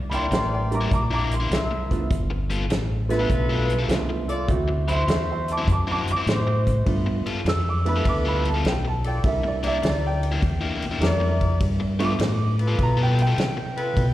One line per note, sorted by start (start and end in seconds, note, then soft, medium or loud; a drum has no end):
0.00 0.29 C2 medium
0.10 0.24 C3 medium
0.10 0.24 A#3 medium
0.10 0.25 D4 medium
0.10 0.79 E4 medium
0.10 0.25 E4 medium
0.10 0.79 A#4 medium
0.10 0.79 D5 medium
0.10 0.15 B5 medium
0.10 closed hi-hat medium
0.14 0.31 G5 medium
0.14 0.32 C6 loud
0.31 0.89 A1 loud
0.31 0.51 G5 medium
0.31 0.52 C6 medium
0.31 muted overdriven electric guitar stroke soft
0.31 snare loud
0.31 closed hi-hat medium
0.54 0.71 G5 medium
0.54 0.72 C6 medium
0.71 0.89 G3 medium
0.71 0.89 A#3 medium
0.71 0.89 D4 medium
0.71 0.89 E4 medium
0.71 0.91 A#5 medium
0.71 closed hi-hat medium
0.75 0.92 D6 medium
0.81 0.90 C3 medium
0.81 0.90 A#3 medium
0.81 0.90 D4 medium
0.81 0.90 E4 medium
0.91 1.49 A#1 medium
0.91 1.11 A#5 medium
0.91 1.12 D6 loud
0.91 muted overdriven electric guitar stroke soft
0.91 kick loud
0.91 closed hi-hat medium
1.11 1.34 C3 medium
1.11 1.34 A#3 medium
1.11 1.34 D4 medium
1.11 1.34 E4 medium
1.11 1.31 A#5 medium
1.11 1.32 D6 loud
1.31 1.90 C6 medium
1.31 closed hi-hat medium
1.40 1.57 C3 medium
1.40 1.57 A#3 medium
1.40 1.56 D4 medium
1.40 1.56 E4 loud
1.50 2.08 C2 medium
1.50 2.10 E4 medium
1.50 2.10 A#4 medium
1.50 2.11 E5 medium
1.50 snare loud
1.50 closed hi-hat medium
1.71 muted overdriven electric guitar stroke medium
1.91 2.08 A3 medium
1.91 2.08 B3 medium
1.91 2.09 D4 medium
1.91 2.09 F4 medium
1.91 kick medium
1.91 closed hi-hat medium
2.10 2.68 G1 medium
2.10 kick loud
2.10 closed hi-hat loud
2.30 muted overdriven electric guitar stroke soft
2.50 2.63 G3 medium
2.50 2.63 B3 medium
2.50 2.63 F4 loud
2.50 2.63 A4 medium
2.50 closed hi-hat medium
2.70 3.27 A1 loud
2.70 muted overdriven electric guitar stroke soft
2.70 snare loud
2.70 closed hi-hat loud
3.09 3.85 A3 medium
3.09 3.85 B3 medium
3.09 3.85 D4 medium
3.09 3.77 F4 medium
3.09 3.85 F4 medium
3.09 3.77 A4 medium
3.09 3.77 B4 loud
3.09 snare soft
3.09 closed hi-hat medium
3.19 3.28 G3 medium
3.19 3.29 B3 medium
3.19 3.29 F4 medium
3.19 3.29 A4 medium
3.29 3.87 B1 medium
3.29 muted overdriven electric guitar stroke medium
3.29 kick loud
3.29 closed hi-hat medium
3.49 3.73 G3 medium
3.49 3.73 B3 medium
3.49 3.73 F4 medium
3.49 3.72 A4 medium
3.70 closed hi-hat medium
3.79 3.95 G3 medium
3.79 3.95 B3 medium
3.79 3.95 F4 medium
3.79 3.95 A4 loud
3.88 4.47 C2 loud
3.88 4.24 A3 medium
3.88 4.25 B3 medium
3.88 4.25 D4 medium
3.88 4.25 F4 medium
3.88 snare loud
3.88 closed hi-hat medium
4.09 muted overdriven electric guitar stroke medium
4.28 4.48 F4 loud
4.28 4.48 A4 medium
4.28 4.49 D5 loud
4.28 closed hi-hat medium
4.48 5.06 D2 medium
4.48 4.84 A3 medium
4.48 4.84 C4 medium
4.48 4.84 E4 medium
4.48 4.84 F#4 medium
4.48 kick loud
4.48 closed hi-hat medium
4.68 muted overdriven electric guitar stroke medium
4.87 5.01 D3 medium
4.87 5.01 F#3 medium
4.87 5.01 C4 medium
4.87 5.55 E4 medium
4.87 5.01 E4 loud
4.87 5.56 F#4 medium
4.87 5.56 C5 medium
4.87 4.92 B5 medium
4.87 closed hi-hat medium
4.92 5.08 E5 medium
4.92 5.09 C6 loud
5.08 5.66 E2 medium
5.08 5.28 E5 medium
5.08 muted overdriven electric guitar stroke soft
5.08 snare loud
5.08 closed hi-hat medium
5.12 5.29 C6 loud
5.32 5.48 E5 medium
5.32 5.49 C6 medium
5.48 5.68 A5 medium
5.48 5.69 D6 medium
5.48 closed hi-hat medium
5.58 5.67 D3 medium
5.58 5.67 F#3 medium
5.58 5.67 C4 medium
5.58 5.67 E4 medium
5.67 6.04 F#2 medium
5.67 muted overdriven electric guitar stroke soft
5.67 kick loud
5.67 closed hi-hat medium
5.72 5.88 A5 medium
5.72 5.89 D6 medium
5.87 6.11 D3 medium
5.87 6.11 F#3 medium
5.87 6.10 C4 medium
5.87 6.10 E4 medium
5.87 6.08 A5 medium
5.91 6.09 D6 loud
6.06 muted fingered electric bass stroke soft
6.06 closed hi-hat medium
6.11 6.67 D6 loud
6.17 6.33 D3 medium
6.17 6.33 F#3 medium
6.17 6.33 C4 loud
6.17 6.33 E4 medium
6.26 6.84 A2 loud
6.26 6.86 E4 medium
6.26 6.86 F#4 medium
6.26 6.86 C5 medium
6.26 snare loud
6.26 closed hi-hat medium
6.47 muted overdriven electric guitar stroke medium
6.67 kick medium
6.67 closed hi-hat medium
6.85 7.24 G2 medium
6.85 7.22 A3 medium
6.85 7.22 B3 medium
6.85 7.22 D4 medium
6.85 7.22 F4 medium
6.85 kick loud
6.85 ride medium
7.06 muted overdriven electric guitar stroke soft
7.26 7.39 G3 medium
7.26 7.39 B3 medium
7.26 7.39 F4 medium
7.26 7.39 A4 medium
7.26 muted fingered electric bass stroke soft
7.26 ride medium
7.45 8.03 F2 loud
7.45 7.66 E6 loud
7.45 muted overdriven electric guitar stroke soft
7.45 snare loud
7.45 ride medium
7.69 7.87 D6 medium
7.85 8.61 A3 medium
7.85 8.60 B3 medium
7.85 8.61 D4 medium
7.85 8.61 E4 medium
7.85 8.53 A4 medium
7.85 8.53 B4 medium
7.85 8.06 B5 medium
7.85 ride medium
7.96 8.04 G3 medium
7.96 8.05 B3 medium
7.96 8.05 F4 medium
7.96 8.05 A4 medium
8.05 8.63 D2 medium
8.05 8.26 D6 loud
8.05 muted overdriven electric guitar stroke medium
8.05 kick loud
8.05 ride medium
8.25 8.48 G3 medium
8.25 8.48 B3 medium
8.25 8.48 F4 medium
8.25 8.48 A4 medium
8.25 8.46 B5 loud
8.45 8.66 A5 medium
8.45 ride medium
8.54 8.71 G3 medium
8.54 8.71 B3 medium
8.54 8.71 F4 medium
8.54 8.70 A4 medium
8.64 9.22 B1 medium
8.64 snare loud
8.64 ride medium
8.68 8.86 G5 medium
8.85 9.05 A5 medium
8.85 muted overdriven electric guitar stroke soft
9.03 9.23 F4 medium
9.03 9.24 A4 medium
9.03 9.24 D5 medium
9.03 9.25 G5 medium
9.03 ride medium
9.23 9.81 C2 medium
9.23 9.59 G3 medium
9.23 9.59 A#3 medium
9.23 9.60 D4 medium
9.23 9.60 E4 medium
9.23 kick loud
9.23 ride medium
9.28 9.45 E5 medium
9.43 9.65 D5 medium
9.43 muted overdriven electric guitar stroke soft
9.63 9.76 C3 medium
9.63 9.76 A#3 medium
9.63 9.76 D4 medium
9.63 10.30 E4 medium
9.63 9.77 E4 loud
9.63 10.31 A#4 medium
9.63 10.31 D5 medium
9.63 ride medium
9.67 9.84 E5 loud
9.82 10.41 D2 medium
9.82 muted overdriven electric guitar stroke soft
9.82 snare loud
9.82 ride medium
9.87 10.04 D5 medium
10.07 11.19 G5 medium
10.23 ride medium
10.32 10.40 C3 medium
10.32 10.40 A#3 medium
10.32 10.40 D4 medium
10.32 10.41 E4 medium
10.41 11.00 E2 medium
10.41 muted overdriven electric guitar stroke soft
10.41 kick loud
10.41 ride medium
10.61 10.85 C3 medium
10.61 10.85 A#3 medium
10.61 10.84 D4 medium
10.61 10.84 E4 medium
10.82 ride medium
10.91 11.08 C3 medium
10.91 11.07 A#3 medium
10.91 11.07 D4 medium
10.91 11.07 E4 medium
11.00 11.59 F2 medium
11.00 11.36 G3 medium
11.00 11.36 A#3 medium
11.00 11.37 D4 medium
11.00 11.60 E4 loud
11.00 11.37 E4 medium
11.00 11.61 A#4 medium
11.00 11.61 D5 loud
11.00 snare loud
11.00 ride medium
11.20 muted overdriven electric guitar stroke medium
11.41 kick medium
11.41 ride medium
11.60 12.18 G2 medium
11.60 kick loud
11.60 ride medium
11.80 muted overdriven electric guitar stroke medium
11.99 12.12 G3 medium
11.99 12.17 A3 medium
11.99 12.17 B3 medium
11.99 12.12 B3 medium
11.99 12.17 D4 medium
11.99 12.17 F4 medium
11.99 12.13 F4 medium
11.99 12.13 A4 loud
11.99 12.04 C#6 medium
11.99 ride medium
12.04 12.78 D6 loud
12.19 12.77 A2 loud
12.19 muted overdriven electric guitar stroke soft
12.19 snare loud
12.19 ride medium
12.58 13.25 F4 medium
12.58 13.26 A4 medium
12.58 13.26 B4 medium
12.58 ride medium
12.68 12.77 G3 medium
12.68 12.77 B3 medium
12.68 12.77 F4 medium
12.68 12.77 A4 medium
12.78 13.36 B2 medium
12.78 muted overdriven electric guitar stroke soft
12.78 kick loud
12.78 ride medium
12.83 13.00 A#5 loud
12.97 13.21 G3 medium
12.97 13.21 B3 medium
12.97 13.21 F4 medium
12.97 13.20 A4 loud
13.03 13.20 G5 loud
13.18 14.14 G5 loud
13.18 ride medium
13.27 13.43 G3 medium
13.27 13.43 B3 medium
13.27 13.43 F4 medium
13.27 13.43 A4 medium
13.38 13.95 C3 medium
13.38 snare loud
13.38 ride medium
13.57 muted overdriven electric guitar stroke soft
13.76 14.04 F4 medium
13.76 14.04 A4 medium
13.76 14.05 B4 loud
13.76 ride medium
13.97 14.14 B2 medium
13.97 kick loud
13.97 ride medium